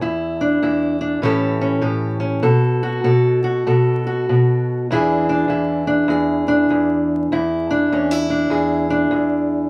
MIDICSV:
0, 0, Header, 1, 2, 480
1, 0, Start_track
1, 0, Tempo, 607287
1, 25, Time_signature, 4, 2, 24, 8
1, 7664, End_track
2, 0, Start_track
2, 0, Title_t, "Steel-string acoustic guitar"
2, 0, Program_c, 0, 25
2, 10, Note_on_c, 0, 40, 68
2, 16, Note_on_c, 0, 64, 60
2, 323, Note_on_c, 0, 62, 58
2, 485, Note_off_c, 0, 40, 0
2, 486, Note_off_c, 0, 64, 0
2, 494, Note_on_c, 0, 40, 64
2, 497, Note_on_c, 0, 64, 55
2, 788, Note_off_c, 0, 62, 0
2, 797, Note_on_c, 0, 62, 54
2, 957, Note_off_c, 0, 62, 0
2, 958, Note_off_c, 0, 64, 0
2, 960, Note_off_c, 0, 40, 0
2, 964, Note_on_c, 0, 45, 67
2, 974, Note_on_c, 0, 52, 62
2, 974, Note_on_c, 0, 61, 56
2, 985, Note_on_c, 0, 67, 59
2, 990, Note_on_c, 0, 69, 61
2, 1266, Note_off_c, 0, 61, 0
2, 1276, Note_on_c, 0, 61, 54
2, 1424, Note_off_c, 0, 45, 0
2, 1429, Note_off_c, 0, 67, 0
2, 1433, Note_on_c, 0, 45, 75
2, 1439, Note_on_c, 0, 67, 57
2, 1728, Note_off_c, 0, 61, 0
2, 1738, Note_on_c, 0, 61, 56
2, 1905, Note_off_c, 0, 45, 0
2, 1906, Note_off_c, 0, 61, 0
2, 1908, Note_off_c, 0, 67, 0
2, 1909, Note_off_c, 0, 69, 0
2, 1917, Note_on_c, 0, 47, 69
2, 1921, Note_on_c, 0, 69, 66
2, 1936, Note_off_c, 0, 52, 0
2, 2236, Note_on_c, 0, 66, 57
2, 2393, Note_off_c, 0, 47, 0
2, 2396, Note_off_c, 0, 69, 0
2, 2402, Note_on_c, 0, 47, 67
2, 2406, Note_on_c, 0, 69, 62
2, 2709, Note_off_c, 0, 66, 0
2, 2718, Note_on_c, 0, 66, 56
2, 2889, Note_off_c, 0, 47, 0
2, 2891, Note_off_c, 0, 69, 0
2, 2898, Note_on_c, 0, 47, 68
2, 2902, Note_on_c, 0, 69, 53
2, 3198, Note_off_c, 0, 66, 0
2, 3214, Note_on_c, 0, 66, 55
2, 3377, Note_off_c, 0, 47, 0
2, 3393, Note_on_c, 0, 47, 68
2, 3836, Note_off_c, 0, 69, 0
2, 3841, Note_off_c, 0, 66, 0
2, 3864, Note_off_c, 0, 47, 0
2, 3877, Note_on_c, 0, 40, 71
2, 3885, Note_on_c, 0, 52, 57
2, 3887, Note_on_c, 0, 62, 57
2, 3892, Note_on_c, 0, 64, 61
2, 3900, Note_on_c, 0, 68, 61
2, 4180, Note_off_c, 0, 62, 0
2, 4183, Note_on_c, 0, 62, 51
2, 4329, Note_off_c, 0, 40, 0
2, 4332, Note_on_c, 0, 40, 65
2, 4341, Note_off_c, 0, 64, 0
2, 4344, Note_on_c, 0, 64, 52
2, 4638, Note_off_c, 0, 62, 0
2, 4641, Note_on_c, 0, 62, 56
2, 4802, Note_off_c, 0, 40, 0
2, 4806, Note_on_c, 0, 40, 70
2, 4819, Note_off_c, 0, 68, 0
2, 4822, Note_on_c, 0, 68, 56
2, 5119, Note_off_c, 0, 62, 0
2, 5122, Note_on_c, 0, 62, 60
2, 5295, Note_off_c, 0, 40, 0
2, 5298, Note_on_c, 0, 40, 68
2, 5782, Note_off_c, 0, 40, 0
2, 5785, Note_on_c, 0, 40, 72
2, 5786, Note_off_c, 0, 64, 0
2, 5789, Note_on_c, 0, 64, 57
2, 5809, Note_off_c, 0, 62, 0
2, 6091, Note_on_c, 0, 62, 58
2, 6115, Note_off_c, 0, 68, 0
2, 6259, Note_off_c, 0, 40, 0
2, 6263, Note_off_c, 0, 64, 0
2, 6263, Note_on_c, 0, 40, 68
2, 6266, Note_on_c, 0, 61, 56
2, 6410, Note_off_c, 0, 61, 0
2, 6410, Note_on_c, 0, 64, 47
2, 6558, Note_off_c, 0, 62, 0
2, 6561, Note_on_c, 0, 62, 57
2, 6716, Note_off_c, 0, 40, 0
2, 6719, Note_on_c, 0, 40, 76
2, 6727, Note_on_c, 0, 68, 57
2, 7034, Note_off_c, 0, 62, 0
2, 7037, Note_on_c, 0, 62, 57
2, 7196, Note_off_c, 0, 40, 0
2, 7200, Note_on_c, 0, 40, 75
2, 7664, Note_off_c, 0, 40, 0
2, 7664, Note_off_c, 0, 52, 0
2, 7664, Note_off_c, 0, 62, 0
2, 7664, Note_off_c, 0, 64, 0
2, 7664, Note_off_c, 0, 68, 0
2, 7664, End_track
0, 0, End_of_file